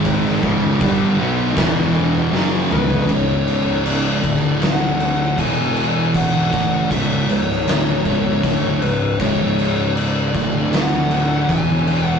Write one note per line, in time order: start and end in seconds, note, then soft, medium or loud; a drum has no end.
0.00 0.39 G#1 medium
0.00 0.42 G#2 loud
0.00 0.43 D#3 medium
0.00 0.43 G#3 loud
0.05 kick medium
0.05 crash medium
0.26 snare soft
0.43 0.79 C#1 medium
0.43 0.80 C#2 medium
0.43 0.81 G#2 medium
0.43 0.81 C#3 medium
0.43 kick loud
0.80 1.17 G1 loud
0.80 1.17 G2 medium
0.80 1.18 D3 loud
0.80 1.19 G3 loud
0.80 kick loud
0.80 crash medium
1.17 1.55 B1 medium
1.17 1.56 B2 medium
1.17 1.57 F#3 medium
1.17 1.58 B3 loud
1.56 2.29 E1 loud
1.56 2.32 E2 loud
1.56 2.32 B2 loud
1.56 2.33 E3 loud
1.56 kick loud
1.56 snare loud
1.56 crash medium
2.32 2.68 F#1 loud
2.32 2.70 F#2 medium
2.32 2.70 C#3 loud
2.32 2.71 F#3 loud
2.32 snare medium
2.70 3.07 C#1 medium
2.70 3.06 C#2 loud
2.70 3.07 G#2 medium
2.70 3.08 C#3 loud
2.70 3.11 B4 medium
2.70 mid tom medium
2.90 floor tom medium
3.08 4.20 C#1 medium
3.08 4.22 C#2 loud
3.08 4.22 G#2 medium
3.08 4.23 C#3 loud
3.08 3.83 C#5 medium
3.08 kick medium
3.08 crash medium
3.48 crash medium
3.86 4.63 D5 medium
3.86 crash medium
4.22 5.34 D1 medium
4.22 5.36 D2 medium
4.22 5.37 A2 medium
4.22 5.37 D3 medium
4.22 kick medium
4.22 crash medium
4.62 5.41 F#5 medium
4.62 snare loud
4.62 crash medium
5.00 crash medium
5.37 6.49 E1 medium
5.37 6.51 E2 medium
5.37 6.51 B2 loud
5.37 6.51 E3 loud
5.37 6.11 G#5 medium
5.37 kick medium
5.37 crash medium
5.76 crash medium
6.14 6.91 F#5 medium
6.14 kick loud
6.14 crash medium
6.52 6.88 A1 medium
6.52 6.89 A2 medium
6.52 6.90 E3 medium
6.52 6.90 A3 medium
6.52 kick loud
6.52 crash medium
6.90 7.26 C#1 loud
6.90 7.27 C#2 loud
6.90 7.28 G#2 loud
6.90 7.28 C#3 loud
6.90 7.30 E5 medium
6.90 kick loud
6.90 crash medium
7.29 7.64 C#1 medium
7.29 7.60 C#2 medium
7.29 7.60 G#2 medium
7.29 8.81 C#5 medium
7.29 crash medium
7.51 snare soft
7.66 8.02 D1 medium
7.66 8.04 D2 loud
7.66 8.05 A2 loud
7.66 8.05 D3 loud
7.66 snare loud
7.66 crash medium
8.05 8.41 C#1 medium
8.05 8.42 C#2 medium
8.05 8.43 G#2 medium
8.05 8.43 C#3 loud
8.05 kick loud
8.05 crash medium
8.43 8.79 D1 medium
8.43 8.81 D2 loud
8.43 8.81 A2 loud
8.43 8.82 D3 loud
8.43 kick loud
8.43 crash medium
8.82 9.17 C#1 medium
8.82 9.13 C#2 medium
8.82 9.13 G#2 medium
8.82 9.19 B4 medium
8.82 crash medium
9.20 10.30 C#1 medium
9.20 10.33 C#2 medium
9.20 10.34 G#2 loud
9.20 10.34 C#3 loud
9.20 9.95 C#5 medium
9.20 kick loud
9.20 crash medium
9.59 crash medium
9.96 10.75 D5 medium
9.96 crash medium
10.35 11.45 D1 medium
10.35 11.48 D2 medium
10.35 11.48 A2 medium
10.35 11.49 D3 loud
10.35 kick loud
10.35 crash medium
10.73 11.52 F#5 loud
10.73 snare loud
10.73 crash medium
11.11 crash medium
11.49 12.19 E1 medium
11.49 12.19 E2 loud
11.49 12.19 B2 loud
11.49 12.19 E3 loud
11.49 12.07 G#5 loud
11.49 kick loud
11.49 crash medium
11.87 crash medium
12.07 12.19 F#5 loud